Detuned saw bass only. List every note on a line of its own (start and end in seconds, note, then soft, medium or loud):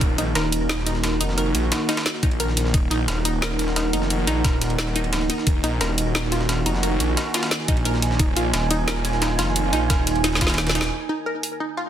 0.01 0.17 D#1 loud
0.18 0.34 A#1 loud
0.35 1.19 D#1 medium
1.21 1.53 F1 loud
1.55 1.70 A#1 loud
2.23 2.73 A#1 loud
2.74 2.90 D#1 medium
2.91 3.07 A#1 loud
3.08 3.92 D#1 medium
3.93 4.26 F1 loud
4.27 4.43 A#1 loud
4.44 5.03 D#1 medium
5.03 5.28 D1 medium
5.47 5.62 D#1 loud
5.64 5.79 A#1 loud
5.81 6.65 D#1 medium
6.66 6.99 F1 loud
7.00 7.16 A#1 loud
7.68 8.18 A#1 loud
8.19 8.35 D#1 loud
8.37 8.52 A#1 loud
8.54 9.37 D#1 medium
9.39 9.72 F1 medium
9.73 9.89 A#1 loud
9.90 10.74 D#1 medium
10.75 10.91 D#1 loud